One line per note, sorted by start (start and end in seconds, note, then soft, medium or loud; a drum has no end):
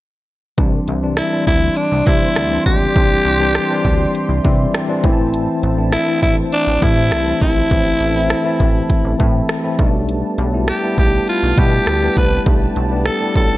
0.58 0.80 C2 medium
0.58 0.88 E3 medium
0.58 0.88 G3 medium
0.58 0.88 C4 medium
0.58 0.88 D4 medium
0.58 9.75 E4 medium
0.58 4.99 D5 medium
0.58 4.99 C6 medium
0.58 kick loud
0.58 closed hi-hat medium
0.88 1.21 C2 medium
0.88 closed hi-hat medium
1.02 1.23 E3 medium
1.02 1.23 G3 medium
1.02 1.23 C4 medium
1.02 1.23 D4 medium
1.17 1.45 E4 medium
1.17 cross-stick loud
1.17 closed hi-hat medium
1.32 1.82 E3 medium
1.32 1.82 G3 medium
1.32 1.82 C4 medium
1.32 1.83 D4 medium
1.47 1.69 D2 medium
1.47 1.78 E4 medium
1.47 kick medium
1.47 closed hi-hat medium
1.76 2.08 D4 medium
1.76 closed hi-hat medium
1.92 2.03 C2 loud
2.06 2.29 C3 medium
2.06 2.36 E3 medium
2.06 2.36 G3 medium
2.06 2.37 C4 medium
2.06 2.37 D4 medium
2.06 2.65 E4 medium
2.06 kick medium
2.06 closed hi-hat medium
2.36 2.59 D2 medium
2.36 cross-stick loud
2.36 closed hi-hat medium
2.51 2.81 E3 medium
2.51 2.81 G3 medium
2.51 2.81 C4 medium
2.51 2.81 D4 medium
2.66 2.88 C#2 medium
2.66 4.40 G4 medium
2.66 kick medium
2.66 closed hi-hat medium
2.95 3.18 C2 loud
2.95 3.26 E3 medium
2.95 3.26 G3 medium
2.95 3.26 C4 medium
2.95 3.26 D4 medium
2.95 kick loud
2.95 closed hi-hat medium
3.25 3.59 C2 loud
3.25 closed hi-hat medium
3.39 3.60 E3 medium
3.39 3.60 G3 medium
3.39 3.60 C4 medium
3.39 3.60 D4 medium
3.55 cross-stick loud
3.55 closed hi-hat medium
3.69 4.20 E3 medium
3.69 4.20 G3 medium
3.69 4.20 C4 medium
3.69 4.20 D4 medium
3.85 4.07 D2 medium
3.85 kick medium
3.85 closed hi-hat medium
4.15 closed hi-hat medium
4.29 4.40 C2 loud
4.44 4.67 C3 medium
4.44 4.74 E3 medium
4.44 4.74 G3 medium
4.44 4.74 C4 medium
4.44 4.75 E4 medium
4.44 4.53 D5 medium
4.44 kick medium
4.44 closed hi-hat medium
4.54 4.73 E5 medium
4.74 5.11 G5 medium
4.74 cross-stick loud
4.74 closed hi-hat medium
4.88 5.02 E3 medium
4.88 5.04 G3 medium
4.88 5.03 C4 medium
4.88 5.04 D4 medium
5.03 5.48 A1 medium
5.03 5.63 E3 medium
5.03 5.63 A3 medium
5.03 5.63 C4 medium
5.03 5.63 E4 loud
5.03 9.75 C5 medium
5.03 13.58 A5 medium
5.03 kick loud
5.03 closed hi-hat medium
5.13 5.32 A5 medium
5.34 closed hi-hat medium
5.63 5.97 A1 loud
5.63 closed hi-hat medium
5.77 5.97 E3 medium
5.77 5.98 A3 medium
5.77 5.98 C4 medium
5.77 5.98 D4 medium
5.92 6.20 E4 loud
5.92 cross-stick loud
5.92 closed hi-hat medium
6.07 6.57 E3 medium
6.07 6.58 A3 medium
6.07 6.58 C4 medium
6.07 6.58 E4 medium
6.22 6.45 A1 medium
6.22 6.36 E4 loud
6.22 kick medium
6.22 closed hi-hat medium
6.52 6.84 D4 loud
6.52 closed hi-hat medium
6.67 6.78 A1 medium
6.81 7.13 A2 medium
6.81 7.11 E3 medium
6.81 7.12 A3 medium
6.81 7.12 C4 medium
6.81 7.42 E4 loud
6.81 7.12 G4 medium
6.81 kick medium
6.81 closed hi-hat medium
7.11 7.34 C2 medium
7.11 cross-stick medium
7.11 closed hi-hat medium
7.26 7.56 E3 medium
7.26 7.56 A3 medium
7.26 7.57 C4 medium
7.26 7.57 E4 medium
7.41 7.64 A#1 medium
7.41 9.16 E4 medium
7.41 kick medium
7.41 closed hi-hat medium
7.71 7.93 A1 loud
7.71 8.01 E3 medium
7.71 8.01 A3 medium
7.71 8.01 C4 medium
7.71 8.01 E4 medium
7.71 kick loud
7.71 closed hi-hat medium
8.00 8.34 A1 medium
8.00 closed hi-hat medium
8.15 8.35 E3 medium
8.15 8.35 A3 medium
8.15 8.36 C4 medium
8.15 8.36 E4 medium
8.30 cross-stick loud
8.30 closed hi-hat medium
8.44 8.95 E3 medium
8.44 8.95 A3 medium
8.44 8.95 C4 medium
8.44 8.95 E4 medium
8.60 8.82 A1 medium
8.60 kick medium
8.60 closed hi-hat medium
8.90 kick medium
8.90 closed hi-hat medium
9.04 9.15 A1 medium
9.18 9.42 A2 medium
9.18 9.49 E3 medium
9.18 9.49 A3 medium
9.18 9.49 C4 medium
9.18 9.50 E4 medium
9.18 kick medium
9.18 closed hi-hat medium
9.49 cross-stick loud
9.49 closed hi-hat medium
9.63 9.79 E3 medium
9.63 9.77 A3 medium
9.63 9.79 C4 medium
9.63 9.79 E4 medium
9.78 10.23 B1 medium
9.78 10.38 G3 medium
9.78 10.38 A3 medium
9.78 10.38 B3 medium
9.78 10.38 D4 medium
9.78 13.58 G4 medium
9.78 13.58 B4 medium
9.78 kick loud
9.78 closed hi-hat medium
10.09 closed hi-hat medium
10.38 10.72 B1 loud
10.38 closed hi-hat medium
10.53 10.73 G3 medium
10.53 10.73 A3 medium
10.53 10.73 B3 medium
10.53 10.74 E4 medium
10.68 10.96 G4 medium
10.68 cross-stick loud
10.68 closed hi-hat medium
10.83 11.33 G3 medium
10.83 11.33 A3 medium
10.83 11.33 B3 medium
10.83 11.33 E4 medium
10.98 11.20 B1 medium
10.98 11.26 G4 medium
10.98 kick medium
10.98 closed hi-hat medium
11.28 11.60 F4 medium
11.28 closed hi-hat medium
11.43 11.54 B1 loud
11.57 11.80 B2 medium
11.57 11.87 G3 medium
11.57 11.87 A3 medium
11.57 11.87 B3 medium
11.57 11.88 E4 medium
11.57 12.17 G4 medium
11.57 kick medium
11.57 closed hi-hat medium
11.87 12.09 D2 medium
11.87 cross-stick loud
11.87 closed hi-hat medium
12.02 12.32 G3 medium
12.02 12.32 A3 medium
12.02 12.32 B3 medium
12.02 12.32 E4 medium
12.17 12.39 C2 medium
12.17 12.45 B4 medium
12.17 kick medium
12.17 closed hi-hat medium
12.46 12.68 B1 loud
12.46 12.76 G3 medium
12.46 12.76 A3 medium
12.46 12.77 B3 medium
12.46 12.77 D4 medium
12.46 kick loud
12.46 closed hi-hat medium
12.76 13.10 B1 medium
12.76 closed hi-hat medium
12.91 13.11 G3 medium
12.91 13.11 A3 medium
12.91 13.11 B3 medium
12.91 13.11 D4 medium
13.05 13.34 A4 medium
13.05 cross-stick loud
13.05 closed hi-hat medium
13.21 13.58 G3 medium
13.21 13.58 A3 medium
13.21 13.58 B3 medium
13.21 13.58 E4 medium
13.35 13.58 B1 medium
13.35 13.58 A4 medium
13.35 kick medium
13.35 closed hi-hat medium